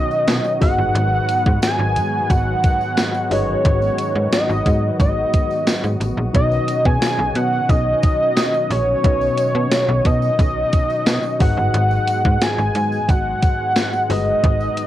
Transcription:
Already playing: B2 D#3 F#3 B3 C#4 D#4 F#4 B4 C#5 D#5
0.11 tambourine
0.28 B2, snare, closed hi-hat, tambourine
0.44 tambourine
0.60 G#1 G#2 G#3 D#4 F#4 G#4 B4 D#5 F#5, kick, open hi-hat, tambourine
0.78 G1
0.95 G#1, closed hi-hat
1.29 closed hi-hat, tambourine
1.46 G#2, kick
1.62 G#5, snare, closed hi-hat, tambourine
1.79 G#1
1.96 G#2, closed hi-hat, tambourine
2.30 G#1 F#5, kick, closed hi-hat, tambourine
2.63 kick, closed hi-hat, tambourine
2.81 tambourine
2.97 snare, closed hi-hat, tambourine
3.14 tambourine
3.30 G1 G#3 D#4 F#4 G#4 B4 C#5 D#5, open hi-hat, tambourine
3.65 G#1, kick, closed hi-hat
3.82 tambourine
3.98 closed hi-hat, tambourine
4.15 G#2
4.32 D#5, snare, closed hi-hat, tambourine
4.49 G#1, tambourine
4.66 G#2, kick, closed hi-hat, tambourine
5.00 G#1 D#5, kick, closed hi-hat, tambourine
5.33 kick, closed hi-hat, tambourine
5.51 tambourine
5.67 snare, closed hi-hat, tambourine
5.84 G#2, tambourine
6.00 A1, closed hi-hat, tambourine
6.17 A#1
6.33 B1 B2 C#4 D#4 F#4 B4 C#5 D#5, kick, closed hi-hat
6.52 tambourine
6.68 closed hi-hat, tambourine
6.85 B2 G#5, kick
7.02 snare, closed hi-hat, tambourine
7.19 B1
7.35 B2 F#5, closed hi-hat, tambourine
7.69 B1 D#5, kick, closed hi-hat, tambourine
8.03 kick, closed hi-hat, tambourine
8.37 snare, closed hi-hat, tambourine
8.54 tambourine
8.70 A#1 C#5, open hi-hat, tambourine
9.03 B1 B2 D#4 F#4 B4 C#5 D#5, kick, closed hi-hat
9.21 tambourine
9.38 closed hi-hat, tambourine
9.55 B2
9.71 snare, closed hi-hat, tambourine
9.88 B1
10.05 B2 D#5, kick, closed hi-hat, tambourine
10.22 tambourine
10.39 B1, kick, closed hi-hat, tambourine
10.72 kick, closed hi-hat, tambourine
10.90 tambourine
11.06 B2, snare, closed hi-hat, tambourine
11.23 tambourine
11.39 G#1 G#2 G#3 D#4 F#4 G#4 B4 D#5 F#5, kick, open hi-hat, tambourine
11.57 G1
11.74 G#1, closed hi-hat
11.91 tambourine
12.07 closed hi-hat, tambourine
12.25 G#2, kick
12.41 G#5, snare, closed hi-hat, tambourine
12.58 G#1, tambourine
12.75 G#2, closed hi-hat, tambourine
12.92 tambourine
13.09 G#1 F#5, kick, closed hi-hat, tambourine
13.42 kick, closed hi-hat, tambourine
13.76 snare, closed hi-hat, tambourine
13.93 tambourine
14.09 G1 G#3 D#4 F#4 G#4 B4 D#5, open hi-hat, tambourine
14.44 G#1, kick, closed hi-hat
14.60 tambourine
14.77 closed hi-hat, tambourine

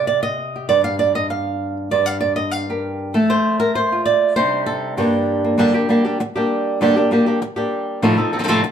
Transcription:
Already playing: C3
0.07 D5
0.23 D#5
0.56 G4
0.69 G2 D5
0.84 F5
0.99 D5
1.15 D#5
1.30 F5
1.91 G2 D5
2.06 F5
2.21 D5
2.36 D#5
2.51 F5
2.70 G4 A#4
3.14 A3 A4
3.30 C5
3.60 A#4
3.75 C5
3.92 F4
4.06 D5
4.36 C3 G3 D4 D#4 C5
4.66 A4
4.97 G2 G3 A#3 D4 G4
5.44 A#3
5.58 G2 D3 G3 A#3 D4 G4
5.74 G3 A#3 D4 G4
5.89 G3 A#3 D4 G4
6.04 G3 A#3 D4 G4
6.20 muted nylon-string guitar stroke
6.36 G3 A#3 D4 G4
6.81 G2 D3 G3 A#3 D4 G4
6.96 G3 A#3 D4 G4
7.11 G3 A#3 D4 G4
7.26 G3 A#3 D4 G4
7.42 muted nylon-string guitar stroke
7.56 G3 A#3 D4 G4
8.02 A2 C3 F3 C4 D#4 A4
8.18 F3 C4 D#4 A4
8.33 F3 C4 D#4 A4
8.39 C3 F3 C4 D#4 A4
8.44 C3 F3 C4 D#4 A4
8.48 A2 C3 F3 C4 D#4 A4
8.64 muted nylon-string guitar stroke

